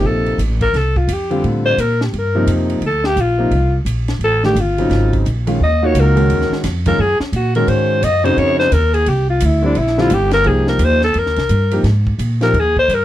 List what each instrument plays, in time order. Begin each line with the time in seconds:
Already playing: grand piano C3 F3 A#3 D#4
0.03 upright bass A#1
0.07 alto saxophone A4
0.26 ride
0.38 upright bass A1, hi-hat pedal, ride
0.61 alto saxophone A#4, kick, ride
0.73 upright bass C2, alto saxophone A4, snare, ride
0.96 alto saxophone F4, kick
1.07 upright bass F2, hi-hat pedal, ride
1.13 alto saxophone G4
1.30 grand piano D3 G3 C4 F4, ride
1.44 upright bass A2, ride
1.65 alto saxophone C5
1.77 upright bass A#2, alto saxophone A#4, hi-hat pedal, ride
2.01 alto saxophone G4, snare
2.13 upright bass G2, ride
2.18 alto saxophone A#4
2.35 grand piano C3 F3 A#3 D#4
2.47 upright bass F2, hi-hat pedal, ride
2.70 ride
2.81 upright bass D2, ride
2.87 alto saxophone A4
3.04 alto saxophone G4, snare
3.16 upright bass A#1, hi-hat pedal, ride
3.21 alto saxophone F4
3.38 grand piano C3 F3 A#3 D#4
3.51 upright bass C2, ride
3.85 upright bass A#1, hi-hat pedal, ride
4.08 snare, ride
4.19 upright bass A1, ride
4.25 alto saxophone A4
4.44 grand piano D#3 A3 D4 G4, alto saxophone G4, snare
4.55 upright bass G1, hi-hat pedal, ride
4.60 alto saxophone F4
4.78 grand piano C#3 F#3 C4 D#4, ride
4.90 upright bass G#1, snare, ride
5.13 kick, ride
5.25 upright bass A#1, hi-hat pedal, ride
5.47 grand piano D#3 G#3 C#4 F4, ride
5.60 upright bass D#2, alto saxophone D#5
5.82 grand piano A#3 D#4 F4 F#4, alto saxophone C#5
5.94 upright bass C#2, hi-hat pedal, ride
6.00 alto saxophone A#4
6.15 grand piano D#3 G#3 C#4 F#4, ride
6.30 upright bass D#2, ride
6.41 snare
6.51 muted upright bass stroke, snare
6.64 upright bass F2, snare, hi-hat pedal, ride
6.86 grand piano D#3 G#3 C#4 F4, alto saxophone A#4, kick, ride
6.98 upright bass F#2, alto saxophone G#4
7.20 alto saxophone C#4, muted upright bass stroke, snare
7.32 upright bass A#2, alto saxophone F#4, hi-hat pedal, ride
7.55 grand piano D#3 G#3 C#4 F#4, alto saxophone A#4, ride
7.67 upright bass G#2, alto saxophone C5, ride
8.02 upright bass F#2, alto saxophone D#5, hi-hat pedal, ride
8.24 grand piano C#3 C4 D#4 F#4, alto saxophone C5, ride
8.37 upright bass F2, alto saxophone C#5, ride
8.59 alto saxophone C5, snare
8.72 upright bass D#2, alto saxophone A#4, hi-hat pedal, ride
8.94 alto saxophone G#4, ride
9.06 upright bass C2, alto saxophone G4, ride
9.30 alto saxophone F4
9.40 upright bass D2, hi-hat pedal, ride
9.45 alto saxophone E4
9.62 grand piano D3 G3 C4 E4, alto saxophone D4
9.75 upright bass A#1, alto saxophone E4, ride
9.87 snare
9.98 grand piano D3 G3 C4 E4, alto saxophone F4, snare
10.10 upright bass G1, hi-hat pedal, ride
10.14 alto saxophone G4
10.31 alto saxophone A#4, snare, ride
10.44 upright bass C2, grand piano F3 A#3 D#4 G4, alto saxophone G#4, ride
10.67 alto saxophone A#4, snare
10.78 upright bass D#2, hi-hat pedal, ride
10.84 alto saxophone C5
11.02 alto saxophone A4, snare
11.14 upright bass F2, ride
11.18 alto saxophone A#4
11.26 upright bass D#2, snare
11.36 upright bass C2, snare, ride
11.49 upright bass G2, hi-hat pedal, ride
11.71 grand piano F3 A#3 D#4 G4, ride
11.83 upright bass G#2, snare, ride
12.07 kick
12.18 upright bass A#2, hi-hat pedal, ride
12.41 grand piano F3 A#3 D#4 G4, alto saxophone A#4, snare, ride
12.53 upright bass D#2, ride
12.59 alto saxophone G#4
12.77 alto saxophone C5, kick
12.88 upright bass G2, hi-hat pedal, ride
12.94 alto saxophone A#4